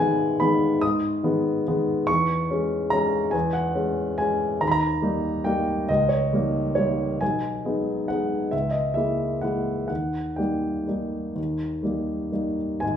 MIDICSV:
0, 0, Header, 1, 2, 480
1, 0, Start_track
1, 0, Tempo, 422535
1, 932, Time_signature, 3, 2, 24, 8
1, 7165, Tempo, 441176
1, 10045, Tempo, 469851
1, 11005, Tempo, 486618
1, 14037, End_track
2, 0, Start_track
2, 0, Title_t, "Grand piano"
2, 0, Program_c, 0, 0
2, 0, Control_c, 0, 64, 127
2, 0, Note_on_c, 0, 44, 54
2, 0, Note_on_c, 0, 51, 46
2, 0, Note_on_c, 0, 56, 44
2, 0, Note_on_c, 0, 59, 51
2, 0, Note_on_c, 0, 78, 77
2, 0, Note_on_c, 0, 80, 86
2, 412, Note_off_c, 0, 56, 0
2, 416, Note_off_c, 0, 51, 0
2, 416, Note_off_c, 0, 59, 0
2, 447, Note_off_c, 0, 80, 0
2, 451, Note_on_c, 0, 83, 81
2, 464, Note_on_c, 0, 51, 45
2, 465, Note_on_c, 0, 56, 45
2, 467, Note_on_c, 0, 59, 48
2, 891, Note_off_c, 0, 51, 0
2, 891, Note_off_c, 0, 56, 0
2, 892, Note_off_c, 0, 59, 0
2, 925, Note_on_c, 0, 87, 85
2, 930, Note_off_c, 0, 83, 0
2, 932, Note_off_c, 0, 44, 0
2, 932, Note_on_c, 0, 44, 53
2, 952, Control_c, 0, 64, 0
2, 954, Note_off_c, 0, 78, 0
2, 1105, Control_c, 0, 64, 127
2, 1397, Note_off_c, 0, 44, 0
2, 1401, Note_on_c, 0, 51, 47
2, 1407, Note_on_c, 0, 56, 45
2, 1411, Note_on_c, 0, 59, 51
2, 1844, Note_off_c, 0, 51, 0
2, 1847, Note_off_c, 0, 56, 0
2, 1849, Note_off_c, 0, 59, 0
2, 1891, Note_off_c, 0, 87, 0
2, 1906, Note_on_c, 0, 51, 46
2, 1908, Note_on_c, 0, 59, 50
2, 1909, Note_on_c, 0, 56, 47
2, 2324, Note_off_c, 0, 51, 0
2, 2326, Note_off_c, 0, 56, 0
2, 2326, Note_off_c, 0, 59, 0
2, 2350, Note_on_c, 0, 85, 90
2, 2369, Note_on_c, 0, 40, 54
2, 2383, Control_c, 0, 64, 0
2, 2537, Control_c, 0, 64, 127
2, 2825, Note_off_c, 0, 40, 0
2, 2846, Note_on_c, 0, 61, 50
2, 2852, Note_on_c, 0, 56, 45
2, 3280, Note_off_c, 0, 61, 0
2, 3283, Note_off_c, 0, 56, 0
2, 3298, Note_on_c, 0, 82, 88
2, 3314, Note_off_c, 0, 85, 0
2, 3323, Note_on_c, 0, 56, 46
2, 3329, Note_on_c, 0, 61, 51
2, 3749, Note_off_c, 0, 56, 0
2, 3752, Note_off_c, 0, 61, 0
2, 3761, Note_on_c, 0, 80, 72
2, 3782, Note_off_c, 0, 82, 0
2, 3782, Note_on_c, 0, 40, 56
2, 3813, Control_c, 0, 64, 0
2, 3957, Control_c, 0, 64, 127
2, 4009, Note_off_c, 0, 80, 0
2, 4011, Note_on_c, 0, 78, 70
2, 4244, Note_off_c, 0, 40, 0
2, 4258, Note_on_c, 0, 61, 49
2, 4260, Note_on_c, 0, 56, 46
2, 4709, Note_off_c, 0, 61, 0
2, 4710, Note_off_c, 0, 56, 0
2, 4746, Note_on_c, 0, 80, 77
2, 4751, Note_off_c, 0, 78, 0
2, 4769, Note_on_c, 0, 56, 41
2, 4777, Note_on_c, 0, 61, 44
2, 5206, Note_off_c, 0, 56, 0
2, 5209, Note_off_c, 0, 61, 0
2, 5237, Note_on_c, 0, 82, 79
2, 5240, Note_off_c, 0, 80, 0
2, 5240, Note_on_c, 0, 39, 54
2, 5266, Control_c, 0, 64, 0
2, 5310, Note_off_c, 0, 82, 0
2, 5312, Note_on_c, 0, 83, 67
2, 5356, Note_on_c, 0, 82, 89
2, 5383, Note_off_c, 0, 83, 0
2, 5414, Control_c, 0, 64, 127
2, 5700, Note_off_c, 0, 39, 0
2, 5705, Note_on_c, 0, 58, 42
2, 5707, Note_on_c, 0, 55, 41
2, 5719, Note_on_c, 0, 63, 47
2, 6153, Note_off_c, 0, 58, 0
2, 6154, Note_off_c, 0, 55, 0
2, 6160, Note_off_c, 0, 63, 0
2, 6185, Note_on_c, 0, 79, 70
2, 6190, Note_off_c, 0, 82, 0
2, 6201, Note_on_c, 0, 58, 43
2, 6205, Note_on_c, 0, 55, 40
2, 6207, Note_on_c, 0, 63, 45
2, 6638, Note_off_c, 0, 58, 0
2, 6640, Note_off_c, 0, 55, 0
2, 6641, Note_off_c, 0, 63, 0
2, 6675, Note_off_c, 0, 79, 0
2, 6686, Note_on_c, 0, 75, 73
2, 6702, Note_on_c, 0, 37, 55
2, 6704, Control_c, 0, 64, 0
2, 6898, Control_c, 0, 64, 127
2, 6914, Note_on_c, 0, 73, 64
2, 6923, Note_off_c, 0, 75, 0
2, 7160, Note_off_c, 0, 37, 0
2, 7191, Note_on_c, 0, 55, 41
2, 7198, Note_on_c, 0, 58, 42
2, 7205, Note_on_c, 0, 63, 41
2, 7617, Note_off_c, 0, 55, 0
2, 7620, Note_off_c, 0, 58, 0
2, 7624, Note_off_c, 0, 63, 0
2, 7630, Note_off_c, 0, 73, 0
2, 7647, Note_on_c, 0, 73, 66
2, 7660, Note_on_c, 0, 55, 37
2, 7665, Note_on_c, 0, 63, 43
2, 7667, Note_on_c, 0, 58, 36
2, 8110, Note_off_c, 0, 55, 0
2, 8112, Note_off_c, 0, 63, 0
2, 8113, Note_off_c, 0, 58, 0
2, 8143, Note_on_c, 0, 80, 69
2, 8147, Note_off_c, 0, 73, 0
2, 8162, Note_on_c, 0, 35, 51
2, 8165, Control_c, 0, 64, 0
2, 8320, Control_c, 0, 64, 127
2, 8616, Note_off_c, 0, 35, 0
2, 8625, Note_on_c, 0, 56, 37
2, 8629, Note_on_c, 0, 63, 40
2, 8635, Note_on_c, 0, 59, 37
2, 9066, Note_off_c, 0, 56, 0
2, 9068, Note_off_c, 0, 63, 0
2, 9071, Note_off_c, 0, 59, 0
2, 9095, Note_on_c, 0, 78, 63
2, 9107, Note_off_c, 0, 80, 0
2, 9116, Note_on_c, 0, 56, 37
2, 9120, Note_on_c, 0, 59, 36
2, 9125, Note_on_c, 0, 63, 37
2, 9537, Note_off_c, 0, 56, 0
2, 9539, Note_off_c, 0, 59, 0
2, 9542, Note_off_c, 0, 63, 0
2, 9565, Note_on_c, 0, 76, 59
2, 9570, Note_off_c, 0, 78, 0
2, 9581, Note_on_c, 0, 37, 43
2, 9597, Control_c, 0, 64, 0
2, 9742, Control_c, 0, 64, 127
2, 9776, Note_on_c, 0, 75, 55
2, 9801, Note_off_c, 0, 76, 0
2, 10030, Note_on_c, 0, 76, 58
2, 10032, Note_off_c, 0, 75, 0
2, 10035, Note_off_c, 0, 37, 0
2, 10044, Note_on_c, 0, 56, 36
2, 10055, Note_on_c, 0, 58, 33
2, 10059, Note_on_c, 0, 64, 35
2, 10479, Note_off_c, 0, 56, 0
2, 10485, Note_off_c, 0, 58, 0
2, 10487, Note_off_c, 0, 64, 0
2, 10513, Note_off_c, 0, 76, 0
2, 10515, Note_on_c, 0, 78, 53
2, 10522, Note_on_c, 0, 56, 33
2, 10534, Note_on_c, 0, 58, 30
2, 10541, Note_on_c, 0, 64, 36
2, 10967, Note_off_c, 0, 56, 0
2, 10972, Note_off_c, 0, 78, 0
2, 10973, Note_off_c, 0, 58, 0
2, 10976, Note_off_c, 0, 64, 0
2, 10988, Note_on_c, 0, 78, 56
2, 11003, Note_on_c, 0, 39, 40
2, 11024, Control_c, 0, 64, 0
2, 11221, Control_c, 0, 64, 127
2, 11467, Note_on_c, 0, 79, 46
2, 11482, Note_off_c, 0, 39, 0
2, 11485, Note_on_c, 0, 55, 31
2, 11488, Note_on_c, 0, 63, 34
2, 11489, Note_off_c, 0, 78, 0
2, 11489, Note_on_c, 0, 58, 31
2, 11946, Note_off_c, 0, 55, 0
2, 11947, Note_off_c, 0, 63, 0
2, 11948, Note_off_c, 0, 58, 0
2, 11972, Note_on_c, 0, 55, 28
2, 11976, Note_on_c, 0, 58, 30
2, 11981, Note_on_c, 0, 63, 34
2, 12416, Note_off_c, 0, 55, 0
2, 12418, Note_off_c, 0, 58, 0
2, 12420, Note_off_c, 0, 63, 0
2, 12447, Note_on_c, 0, 39, 40
2, 12481, Control_c, 0, 64, 0
2, 12645, Control_c, 0, 64, 127
2, 12907, Note_off_c, 0, 39, 0
2, 12913, Note_on_c, 0, 55, 31
2, 12925, Note_on_c, 0, 58, 31
2, 12928, Note_on_c, 0, 63, 33
2, 13365, Note_off_c, 0, 55, 0
2, 13371, Note_off_c, 0, 58, 0
2, 13373, Note_off_c, 0, 63, 0
2, 13401, Note_on_c, 0, 55, 28
2, 13411, Note_on_c, 0, 63, 33
2, 13412, Note_on_c, 0, 58, 29
2, 13638, Note_off_c, 0, 79, 0
2, 13844, Note_off_c, 0, 55, 0
2, 13849, Note_off_c, 0, 63, 0
2, 13850, Note_off_c, 0, 58, 0
2, 13874, Note_on_c, 0, 80, 71
2, 13889, Note_on_c, 0, 44, 55
2, 13892, Note_on_c, 0, 32, 47
2, 13909, Control_c, 0, 64, 0
2, 14037, Note_off_c, 0, 32, 0
2, 14037, Note_off_c, 0, 44, 0
2, 14037, Note_off_c, 0, 80, 0
2, 14037, End_track
0, 0, End_of_file